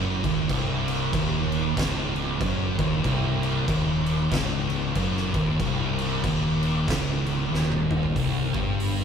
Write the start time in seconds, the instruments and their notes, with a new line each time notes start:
Already playing: fingered electric bass F#1, distorted electric guitar F#2
0.24 fingered electric bass D#1, distorted electric guitar D#2, kick, crash
0.49 fingered electric bass C1, distorted electric guitar C2, kick, crash
0.88 crash
1.13 fingered electric bass D#1, distorted electric guitar D#2, kick, crash
1.52 crash
1.77 fingered electric bass C#1, distorted electric guitar C#2, kick, snare, crash
2.16 crash
2.41 fingered electric bass F#1, distorted electric guitar F#2, kick, crash
2.79 fingered electric bass D#1, distorted electric guitar D#2, kick, crash
3.04 fingered electric bass C1, distorted electric guitar C2, kick, crash
3.43 crash
3.68 fingered electric bass D#1, distorted electric guitar D#2, kick, crash
4.06 crash
4.31 fingered electric bass C#1, distorted electric guitar C#2, kick, snare, crash
4.70 crash
4.95 fingered electric bass F#1, distorted electric guitar F#2, kick, crash
5.17 snare
5.33 fingered electric bass D#1, distorted electric guitar D#2, kick, crash
5.59 fingered electric bass C1, distorted electric guitar C2, kick, crash
5.98 crash
6.24 fingered electric bass D#1, distorted electric guitar D#2, kick, crash
6.63 crash
6.88 fingered electric bass C#1, distorted electric guitar C#2, kick, snare, crash
7.26 crash
7.52 fingered electric bass D#1, distorted electric guitar D#2, snare
7.72 high tom
7.91 mid tom
8.03 floor tom
8.16 fingered electric bass C1, distorted electric guitar C2, kick, open hi-hat
8.54 fingered electric bass G1, distorted electric guitar G2, kick
8.80 open hi-hat